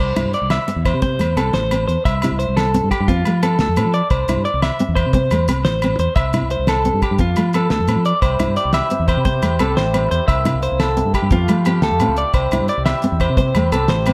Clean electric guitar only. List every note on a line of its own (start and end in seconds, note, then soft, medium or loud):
0.00 0.32 C5 medium
0.34 0.50 D5 medium
0.51 0.84 E5 medium
0.85 1.01 C5 medium
1.02 1.35 C5 medium
1.37 1.53 A4 medium
1.54 1.86 C5 medium
1.88 2.04 C5 medium
2.05 2.38 E5 medium
2.39 2.56 C5 medium
2.57 2.89 A4 medium
2.91 3.07 G4 medium
3.08 3.41 F4 medium
3.43 3.59 A4 medium
3.60 3.93 A4 medium
3.94 4.10 D5 medium
4.11 4.44 C5 medium
4.45 4.61 D5 medium
4.63 4.95 E5 medium
4.95 5.12 C5 medium
5.13 5.46 C5 medium
5.65 5.98 C5 medium
6.00 6.15 C5 medium
6.16 6.49 E5 medium
6.51 6.67 C5 medium
6.69 7.01 A4 medium
7.03 7.19 G4 medium
7.20 7.53 F4 medium
7.55 7.70 A4 medium
7.71 8.04 A4 medium
8.06 8.22 D5 medium
8.22 8.55 C5 medium
8.57 8.73 D5 medium
8.74 9.06 E5 medium
9.08 9.24 C5 medium
9.25 9.58 C5 medium
9.60 9.76 A4 medium
9.77 10.09 C5 medium
10.11 10.27 C5 medium
10.28 10.61 E5 medium
10.63 10.79 C5 medium
10.80 11.12 A4 medium
11.15 11.31 G4 medium
11.32 11.64 F4 medium
11.66 11.82 G4 medium
11.83 12.16 A4 medium
12.18 12.34 D5 medium
12.35 12.67 C5 medium
12.69 12.85 D5 medium
12.86 13.18 E5 medium
13.21 13.36 C5 medium
13.37 13.70 C5 medium
13.72 13.88 A4 medium
13.89 14.13 C5 medium